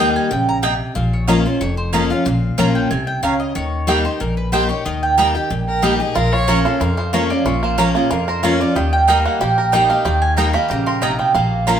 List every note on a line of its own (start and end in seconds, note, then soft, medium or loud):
0.00 0.14 D#2 medium
0.00 0.28 D#3 medium
0.00 0.29 G3 medium
0.00 0.29 A#3 medium
0.00 0.30 D#4 loud
0.00 0.30 G4 medium
0.00 0.15 G5 medium
0.16 0.31 G#5 loud
0.31 0.80 A#1 medium
0.31 0.62 C#3 medium
0.31 0.48 G5 medium
0.49 0.58 A#5 loud
0.62 0.94 C3 medium
0.62 0.72 A#3 medium
0.62 0.73 G4 medium
0.62 0.73 D#5 medium
0.62 0.73 G5 medium
0.95 1.45 A#1 loud
0.95 1.57 A#2 medium
0.95 1.12 F5 medium
1.13 1.28 C#5 medium
1.27 1.45 F3 medium
1.27 1.45 A#3 medium
1.27 1.37 C#4 medium
1.27 1.45 C#4 medium
1.27 1.38 F4 medium
1.27 1.44 F4 loud
1.27 1.38 C#5 loud
1.27 1.45 D#5 medium
1.27 1.38 A#5 loud
1.46 1.61 C#4 soft
1.46 1.60 F4 medium
1.46 1.60 C5 medium
1.61 2.10 F1 medium
1.61 2.23 F2 medium
1.61 1.77 C#5 medium
1.77 1.93 C5 medium
1.93 2.10 F3 medium
1.93 2.10 A#3 medium
1.93 2.02 C#4 medium
1.93 2.10 C#4 medium
1.93 2.03 F4 medium
1.93 2.09 F4 loud
1.93 2.03 C#5 medium
1.93 2.10 D#5 medium
1.93 2.03 A#5 medium
2.10 2.26 C#4 medium
2.10 2.25 F4 medium
2.10 2.24 F5 medium
2.25 2.50 A#1 loud
2.25 2.88 A#2 medium
2.25 2.56 F5 medium
2.58 2.86 A#1 medium
2.58 2.89 F3 medium
2.58 2.89 A#3 medium
2.58 2.68 C#4 loud
2.58 2.89 C#4 medium
2.58 2.68 F4 loud
2.58 2.90 F4 medium
2.58 2.68 C#5 loud
2.58 2.68 A#5 loud
2.58 2.75 A#5 loud
2.75 2.90 G5 medium
2.91 3.19 C2 medium
2.91 3.22 C3 medium
2.91 3.07 G#5 loud
3.07 3.22 G5 medium
3.23 3.51 C#2 medium
3.23 3.54 C#3 medium
3.23 3.33 C#4 medium
3.23 3.33 F4 medium
3.23 3.33 C#5 medium
3.23 3.40 F5 medium
3.23 3.33 A#5 medium
3.40 3.55 D#5 medium
3.55 4.05 D#2 medium
3.55 4.17 D#3 medium
3.55 4.02 C#5 medium
3.87 4.04 G3 medium
3.87 4.04 A#3 medium
3.87 3.98 A#3 medium
3.87 4.05 D#4 loud
3.87 3.98 G4 loud
3.87 4.03 G4 medium
3.87 3.98 D#5 medium
3.87 3.98 G5 loud
4.05 4.21 D#4 medium
4.05 4.20 G4 medium
4.05 4.20 C5 medium
4.20 4.70 A#1 medium
4.20 4.82 A#2 medium
4.20 4.37 A#4 medium
4.37 4.52 B4 medium
4.52 4.69 G3 medium
4.52 4.62 A#3 medium
4.52 4.69 A#3 medium
4.52 4.69 D#4 medium
4.52 4.63 G4 medium
4.52 4.68 G4 loud
4.52 4.69 C5 medium
4.52 4.63 D#5 loud
4.52 4.63 G5 medium
4.69 4.85 D#4 soft
4.69 4.84 G4 medium
4.69 4.85 C#5 medium
4.85 5.35 D#2 medium
4.85 5.48 D#3 medium
4.85 5.02 D#5 medium
5.03 5.17 G5 loud
5.18 5.34 G3 medium
5.18 5.27 A#3 loud
5.18 5.35 A#3 medium
5.18 5.35 D#4 medium
5.18 5.28 G4 loud
5.18 5.34 G4 loud
5.18 5.28 D#5 medium
5.18 5.28 G5 loud
5.18 5.34 A#5 medium
5.35 5.51 D#4 soft
5.35 5.50 G4 medium
5.35 5.80 G5 medium
5.50 5.99 A#1 medium
5.50 6.12 A#2 medium
5.68 5.85 A#4 medium
5.82 5.99 G3 medium
5.82 5.92 A#3 medium
5.82 5.99 A#3 medium
5.82 6.00 D#4 medium
5.82 5.92 G4 medium
5.82 6.01 G4 medium
5.82 5.99 G4 loud
5.82 5.93 D#5 medium
5.82 5.93 G5 medium
6.00 6.16 D#4 soft
6.00 6.15 G4 medium
6.00 6.16 G#4 medium
6.15 6.65 A#1 medium
6.15 6.77 A#2 medium
6.15 6.33 F4 medium
6.15 6.34 A#4 medium
6.32 6.64 F4 medium
6.32 6.57 C#5 loud
6.48 6.64 F3 medium
6.48 6.65 A#3 medium
6.48 6.57 C#4 medium
6.48 6.65 C#4 medium
6.48 6.58 F4 medium
6.48 6.64 F4 medium
6.48 7.78 A#4 medium
6.48 6.58 C#5 medium
6.48 6.58 A#5 medium
6.65 6.81 C#4 soft
6.65 6.80 F4 medium
6.65 6.80 F4 soft
6.65 6.79 A4 medium
6.80 7.29 F2 medium
6.80 7.43 F2 medium
6.80 7.12 F4 medium
6.80 6.97 A#4 medium
6.97 7.43 F3 medium
6.97 7.12 C5 medium
7.13 7.29 F3 medium
7.13 7.30 A#3 medium
7.13 7.23 C#4 medium
7.13 7.30 C#4 loud
7.13 7.23 F4 medium
7.13 7.45 F4 medium
7.13 7.29 F4 medium
7.13 7.23 C#5 medium
7.13 7.30 C#5 medium
7.13 7.23 A#5 medium
7.30 7.62 A#3 medium
7.30 7.46 C#4 soft
7.30 7.45 F4 medium
7.30 7.45 D5 loud
7.45 7.94 A#1 medium
7.45 8.07 A#2 medium
7.45 7.92 F4 medium
7.45 7.63 C#5 medium
7.63 7.95 A#3 medium
7.63 7.78 C5 medium
7.78 7.94 F3 medium
7.78 7.95 A#3 medium
7.78 7.87 C#4 medium
7.78 7.95 C#4 loud
7.78 7.87 F4 loud
7.78 7.94 F4 medium
7.78 8.27 A#4 medium
7.78 7.95 A#4 medium
7.78 7.88 C#5 loud
7.78 7.88 A#5 loud
7.95 8.60 A#3 medium
7.95 8.11 C#4 soft
7.95 8.10 F4 medium
7.95 8.11 G#4 medium
8.10 8.59 F2 medium
8.10 8.72 F2 medium
8.10 8.42 F4 medium
8.10 8.28 A#4 medium
8.28 9.08 A#4 medium
8.28 8.43 C5 medium
8.43 8.59 F3 medium
8.43 8.60 A#3 loud
8.43 8.52 C#4 medium
8.43 8.60 C#4 medium
8.43 8.76 F4 medium
8.43 8.53 F4 medium
8.43 8.59 F4 loud
8.43 8.53 C#5 medium
8.43 8.60 C#5 medium
8.43 8.53 A#5 medium
8.60 9.25 A#3 medium
8.60 8.76 C#4 medium
8.60 8.75 F4 medium
8.60 8.75 D5 medium
8.75 9.24 D#2 medium
8.75 9.38 D#3 medium
8.75 9.41 G4 medium
8.75 8.92 D#5 medium
8.93 9.08 G5 loud
9.07 9.39 G3 medium
9.07 9.17 A#3 medium
9.07 9.39 A#3 medium
9.07 9.40 D#4 medium
9.07 9.17 G4 loud
9.07 9.40 G4 medium
9.07 9.57 A#4 medium
9.07 9.17 D#5 loud
9.07 9.25 F5 medium
9.07 9.18 G5 loud
9.25 9.89 A#3 medium
9.25 9.40 F#5 medium
9.40 9.89 A#1 medium
9.40 10.02 A#2 medium
9.40 9.87 G4 medium
9.40 9.87 G5 loud
9.58 10.37 A#4 medium
9.72 9.89 G3 medium
9.72 9.82 A#3 medium
9.72 9.90 A#3 medium
9.72 10.19 D#4 medium
9.72 9.90 D#4 medium
9.72 9.82 G4 medium
9.72 9.89 G4 loud
9.72 9.82 D#5 medium
9.72 9.82 G5 medium
9.90 10.54 A#3 medium
9.90 10.05 D#4 soft
9.90 10.05 G4 medium
9.90 10.04 F5 medium
10.05 10.54 D#2 medium
10.05 10.67 D#3 medium
10.05 10.51 G4 medium
10.05 10.21 G5 medium
10.22 10.36 G#5 loud
10.37 10.54 G3 medium
10.37 10.47 A#3 medium
10.37 10.54 A#3 medium
10.37 10.54 D#4 medium
10.37 10.47 G4 medium
10.37 10.54 G4 medium
10.37 10.87 A#4 medium
10.37 10.47 D#5 loud
10.37 10.47 G5 loud
10.37 10.53 A#5 medium
10.53 11.19 A#3 medium
10.53 10.70 D#4 soft
10.53 10.70 G4 medium
10.53 10.68 B5 loud
10.68 11.19 A#1 medium
10.68 11.01 C#3 medium
10.68 11.16 G4 medium
10.68 10.86 A#5 medium
10.86 11.80 A#4 medium
10.86 11.01 C6 loud
11.01 11.34 C3 medium
11.01 11.12 A#3 medium
11.01 11.35 D#4 medium
11.01 11.12 G4 medium
11.01 11.12 D#5 medium
11.01 11.12 G5 medium
11.01 11.18 A#5 medium
11.19 11.34 A#3 medium
11.19 11.34 G5 medium
11.34 11.80 A#1 loud
11.34 11.80 A#2 medium
11.34 11.80 A#3 medium
11.34 11.80 F5 medium
11.67 11.80 F3 medium
11.67 11.80 A#3 medium
11.67 11.77 C#4 loud
11.67 11.80 C#4 medium
11.67 11.77 F4 medium
11.67 11.80 F4 medium
11.67 11.80 F4 loud
11.67 11.77 C#5 medium
11.67 11.77 A#5 loud